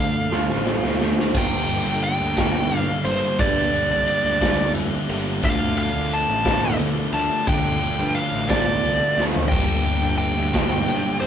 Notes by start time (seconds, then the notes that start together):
Already playing: D2 D3 A3 D4 F5
0.29 D2 D3 A3 F4, snare
0.48 A1, snare
0.64 D3 A3, snare
0.83 D2, snare
1.00 D3 A3, snare
1.19 snare
1.33 G1 G2 D3 G3 A#3 D4, kick, crash
1.37 G5
1.69 ride
1.86 G1
2.04 G5, ride
2.20 D2
2.35 G2 D3 G3, kick, snare, ride
2.71 G2, ride
2.77 F5
3.05 G1 G2 D3 G3 A#3 D4 C5, ride
3.37 G2 D3 G3 A#3 D4 D5, kick, ride
3.74 ride
3.89 C2
4.07 ride
4.23 D2
4.40 G2 D3 G3, kick, snare, ride
4.74 F1, ride
5.08 G1 G2 D3 G3 A#3 D4, ride
5.42 D2 D3 F3 A3 D4 F5, kick, ride
5.46 D4
5.77 F5, ride
5.93 D2
6.11 A5, ride
6.28 A1
6.45 D3 A3 D4, kick, snare, ride
6.79 D3, ride
7.12 D2 D3 F3 A3 D4 A5, ride
7.46 D3 F3 A3 D4 G5, kick, ride
7.81 ride
7.99 G2
8.15 F5, ride
8.32 A1
8.48 D3 A3 D4 D5, kick, snare, ride
8.83 C2, ride
9.17 D2 D3 F3 A3 D4, snare
9.35 floor tom
9.49 G1 G2 D3 G3 D4 G4 A#4 G5, kick, crash
9.53 D3 G3 A#3 D4
9.86 ride
10.02 G1
10.18 G5, ride
10.36 D2
10.54 G2 D3 G3, kick, snare, ride
10.88 G2, ride
11.20 G1 G3 A#3 D4 C5, ride